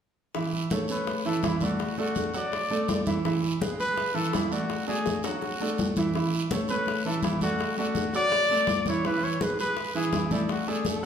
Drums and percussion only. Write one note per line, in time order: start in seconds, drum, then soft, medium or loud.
0.34 high bongo medium
0.34 high conga soft
0.34 long guiro medium
0.53 high conga soft
0.70 high bongo medium
0.70 high conga medium
0.70 short guiro medium
0.88 high conga soft
0.88 short guiro medium
1.07 high bongo medium
1.07 high conga soft
1.07 long guiro medium
1.26 high conga soft
1.43 high bongo medium
1.43 low bongo medium
1.43 high conga medium
1.43 short guiro medium
1.61 high conga medium
1.61 short guiro medium
1.79 high bongo medium
1.79 high conga soft
1.79 long guiro medium
1.98 high bongo soft
1.98 high conga soft
2.15 high bongo medium
2.15 high conga medium
2.15 short guiro medium
2.34 high bongo soft
2.34 high conga soft
2.34 short guiro medium
2.52 high bongo medium
2.52 high conga soft
2.52 long guiro medium
2.71 high conga soft
2.88 high bongo medium
2.88 low bongo medium
2.88 high conga medium
2.88 short guiro medium
3.06 high bongo soft
3.06 high conga medium
3.06 short guiro medium
3.25 high bongo medium
3.25 high conga soft
3.25 long guiro medium
3.44 high conga soft
3.62 high bongo medium
3.62 high conga medium
3.62 short guiro medium
3.80 high conga soft
3.80 short guiro medium
3.98 high bongo medium
3.98 high conga soft
3.98 long guiro medium
4.16 high conga soft
4.33 high bongo medium
4.33 low bongo medium
4.33 high conga medium
4.33 short guiro medium
4.52 short guiro medium
4.70 high bongo medium
4.70 high conga soft
4.70 long guiro medium
4.87 high bongo soft
4.87 high conga soft
5.06 high bongo medium
5.06 high conga medium
5.06 short guiro medium
5.23 high bongo medium
5.23 high conga soft
5.23 short guiro medium
5.41 high bongo medium
5.41 high conga soft
5.41 long guiro medium
5.60 high bongo medium
5.60 high conga soft
5.78 low bongo medium
5.78 high conga medium
5.78 short guiro medium
5.96 low bongo medium
5.96 high conga medium
5.96 short guiro medium
6.14 high bongo medium
6.14 high conga soft
6.14 long guiro medium
6.32 high conga soft
6.51 high bongo medium
6.51 high conga medium
6.51 short guiro medium
6.68 high conga soft
6.68 short guiro medium
6.86 high bongo medium
6.86 high conga soft
6.86 long guiro medium
7.05 high conga soft
7.23 high bongo medium
7.23 low bongo medium
7.23 high conga medium
7.23 short guiro medium
7.41 high conga medium
7.41 short guiro medium
7.59 high bongo medium
7.59 high conga soft
7.59 long guiro medium
7.77 high bongo soft
7.77 high conga soft
7.95 high bongo medium
7.95 high conga medium
7.95 short guiro medium
8.13 high bongo soft
8.13 high conga soft
8.13 short guiro medium
8.32 high bongo medium
8.32 high conga soft
8.32 long guiro medium
8.50 high conga soft
8.67 high bongo medium
8.67 low bongo medium
8.67 high conga medium
8.67 short guiro medium
8.86 high bongo soft
8.86 high conga medium
8.86 short guiro medium
9.05 high bongo medium
9.05 high conga soft
9.05 long guiro medium
9.23 high conga soft
9.41 high bongo medium
9.41 high conga medium
9.41 short guiro medium
9.59 high conga soft
9.59 short guiro medium
9.76 high bongo medium
9.76 high conga soft
9.76 long guiro medium
9.94 high conga soft
10.13 high bongo medium
10.13 low bongo medium
10.13 high conga medium
10.13 short guiro medium
10.31 high conga medium
10.31 short guiro medium
10.49 high bongo medium
10.49 high conga soft
10.49 long guiro medium
10.67 high bongo soft
10.67 high conga soft
10.85 high bongo medium
10.85 high conga medium
10.85 short guiro medium